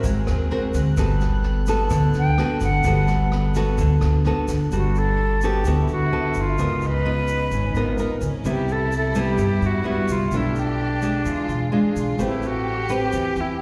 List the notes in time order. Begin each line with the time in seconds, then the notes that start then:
Already playing: C4 F#4 A#4
0.03 G#1 G#3 C4 G#4 A#4 F#6, kick, snare, shaker
0.27 D#2, cross-stick, snare, shaker
0.50 C4 F#4 A#4, snare
0.74 D2, kick, snare, shaker
0.96 G1 G3 B3 F#4 A4, kick, cross-stick, snare, shaker
1.20 snare, shaker
1.44 snare
1.66 B3 F#4 A4, kick, snare, shaker
1.90 D2 D3, kick, cross-stick, snare, shaker
2.13 D2, snare, shaker
2.19 G5
2.38 B3 F#4 A4, cross-stick, snare
2.60 G1 F#5, kick, snare, shaker
2.84 G1 G3 B3 F#4 A4, kick, snare, shaker
3.07 snare, shaker
3.32 cross-stick, snare
3.54 B3 F#4 A4, kick, snare, shaker
3.78 D2 D3, kick, snare, shaker
4.01 D2, cross-stick, snare, shaker
4.24 B3 F#4 A4, snare
4.48 G1, kick, snare, shaker
4.70 G1 G3 B3 D4 F#4 A4, shaker
4.76 F#4
4.95 A4, shaker
5.41 B3 F#4 G4 A4, shaker
5.65 D2 D3 B3 E4 F#4 A4, shaker
5.88 D2, shaker
5.92 F#4
6.12 B3 F#4 A4
6.34 G1, shaker
6.41 F4
6.58 C#2 C#3 B3 D#4 F4 A#4, shaker
6.81 shaker
6.87 B4
7.06 B3 F4
7.28 shaker
7.51 G#1 G#2 C#4, shaker
7.74 G#1 B3 D#4 F4 A#4, shaker
7.98 B3 D#4 F4 A#4, shaker
8.21 C#2 C#4, shaker
8.44 C2 C3 G3 B3 E4, shaker
8.50 G4
8.68 A4, shaker
8.92 shaker
8.97 A4
9.15 G3 B3 E4, shaker
9.20 G4
9.38 G2, shaker
9.62 G2, shaker
9.66 F#4
9.84 G3 B3 E4
9.90 F#4
10.08 C2 F4, shaker
10.31 B1 B2 A3 D4 F4 G4, shaker
10.37 E4
10.55 shaker
10.60 D4
11.02 G#3 D4, shaker
11.25 E2 E3 F4, shaker
11.48 B1, shaker
11.72 G#3 D4 F4
11.95 B1, shaker
12.19 A1 A3 C4 G4 B4, shaker
12.24 E4
12.42 shaker
12.47 F#4
12.89 C4 G4 B4, shaker
13.12 E2 E3, shaker
13.36 E2, shaker
13.41 E4